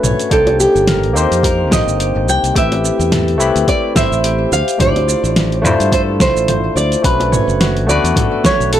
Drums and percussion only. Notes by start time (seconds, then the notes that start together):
0.03 mid tom, shaker
0.19 open hi-hat, shaker
0.31 kick, open hi-hat, shaker
0.47 open hi-hat, high bongo
0.60 shaker
0.76 shaker
0.87 snare, mid tom, open hi-hat, shaker
1.03 open hi-hat
1.17 shaker
1.32 open hi-hat, shaker
1.43 kick, open hi-hat, shaker
1.71 kick, snare, mid tom, shaker
1.88 shaker
2.00 open hi-hat, shaker
2.29 shaker
2.44 open hi-hat, shaker
2.56 kick, open hi-hat, shaker
2.72 open hi-hat, high bongo
2.85 shaker
3.01 shaker
3.12 snare, mid tom, open hi-hat, shaker
3.28 open hi-hat
3.41 shaker
3.56 open hi-hat, shaker
3.68 kick, open hi-hat, shaker
3.96 kick, snare, mid tom, shaker
4.13 shaker
4.24 open hi-hat, shaker
4.53 shaker
4.68 open hi-hat, shaker
4.80 kick, mid tom, open hi-hat, shaker
4.96 open hi-hat, high bongo
5.09 shaker
5.25 shaker
5.36 snare, open hi-hat, shaker
5.52 open hi-hat
5.65 mid tom, shaker
5.80 open hi-hat, shaker
5.92 kick, open hi-hat, shaker
6.20 kick, snare, shaker
6.37 shaker
6.48 mid tom, open hi-hat, shaker
6.77 shaker
6.92 open hi-hat, shaker
7.04 kick, open hi-hat, shaker
7.20 open hi-hat, high bongo
7.33 mid tom, shaker
7.49 shaker
7.61 snare, open hi-hat, shaker
7.77 open hi-hat
7.90 shaker
8.05 open hi-hat, shaker
8.16 kick, mid tom, open hi-hat, shaker
8.44 kick, snare, shaker
8.61 shaker
8.73 open hi-hat, shaker